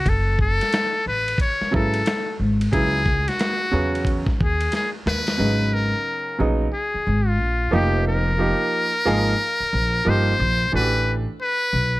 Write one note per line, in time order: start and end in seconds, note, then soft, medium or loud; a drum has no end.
0.00 0.10 F#4 medium
0.06 0.58 F#1 loud
0.06 0.41 A4 medium
0.06 kick loud
0.06 ride medium
0.39 1.03 A4 loud
0.39 kick medium
0.61 snare soft
0.61 ride medium
0.73 snare medium
0.73 hi-hat pedal soft
0.73 ride medium
1.06 1.32 A1 medium
1.06 1.38 B4 medium
1.28 ride medium
1.38 1.71 C#5 medium
1.38 kick medium
1.38 ride medium
1.61 muted upright bass stroke soft
1.61 snare soft
1.71 1.99 G#1 medium
1.71 1.98 C#3 medium
1.71 1.98 F#3 medium
1.71 1.99 B3 medium
1.71 1.99 E4 medium
1.71 2.36 A4 medium
1.71 kick medium
1.94 ride medium
2.06 snare loud
2.06 hi-hat pedal medium
2.06 ride medium
2.40 2.66 G#1 medium
2.61 ride medium
2.72 3.25 C#2 loud
2.72 2.98 C#3 medium
2.72 2.99 F#3 medium
2.72 2.99 B3 medium
2.72 2.99 E4 medium
2.72 3.30 G#4 loud
2.72 kick loud
2.72 ride medium
3.06 kick medium
3.06 snare soft
3.28 4.28 F#4 medium
3.28 snare soft
3.28 ride medium
3.39 snare loud
3.39 hi-hat pedal soft
3.39 ride medium
3.71 4.25 E2 medium
3.71 4.22 C#3 medium
3.71 4.23 F#3 medium
3.71 4.23 B3 medium
3.71 4.23 C#4 medium
3.95 ride soft
4.05 kick medium
4.05 ride medium
4.27 kick medium
4.27 snare soft
4.41 4.66 D#2 medium
4.41 4.72 G#4 medium
4.41 kick medium
4.61 ride medium
4.72 4.90 G#4 medium
4.72 snare medium
4.72 hi-hat pedal medium
4.72 ride medium
5.06 5.32 D#2 medium
5.06 5.75 B4 loud
5.06 snare medium
5.27 snare medium
5.27 ride medium
5.37 5.91 G#1 medium
5.37 6.34 C#3 medium
5.37 6.34 F#3 soft
5.37 6.34 B3 soft
5.37 6.35 D#4 medium
5.74 6.40 A#4 medium
6.38 6.66 A#1 medium
6.38 6.65 C#3 medium
6.38 6.65 F#3 medium
6.38 6.66 B3 medium
6.38 6.66 D#4 medium
6.73 7.29 G#4 medium
6.94 muted upright bass stroke soft
7.07 7.40 G#1 medium
7.28 7.73 F4 medium
7.40 7.66 A#1 medium
7.71 8.51 F1 loud
7.71 8.29 F3 medium
7.71 8.29 A#3 medium
7.71 8.30 D#4 medium
7.71 8.30 G4 medium
7.71 8.04 G4 medium
8.08 10.10 A#4 loud
8.38 8.89 F3 medium
8.38 8.90 A#3 medium
8.38 8.90 D#4 medium
8.38 8.90 G4 medium
9.05 9.32 G#1 medium
9.05 9.32 F3 medium
9.05 9.32 A#3 medium
9.05 9.32 D#4 medium
9.05 9.32 G#4 medium
9.60 muted upright bass stroke soft
9.73 9.99 A#1 medium
10.05 10.32 G1 loud
10.05 10.32 F3 medium
10.05 10.32 A#3 medium
10.05 10.32 D#4 medium
10.05 10.33 G4 medium
10.05 10.74 C5 loud
10.39 10.65 A#1 loud
10.72 11.25 A1 medium
10.72 11.23 E3 medium
10.72 11.23 A3 medium
10.72 11.23 D4 medium
10.72 10.82 F#4 soft
10.72 11.13 B4 loud
10.81 11.27 G4 medium
11.42 12.00 B4 loud
11.73 12.00 B1 medium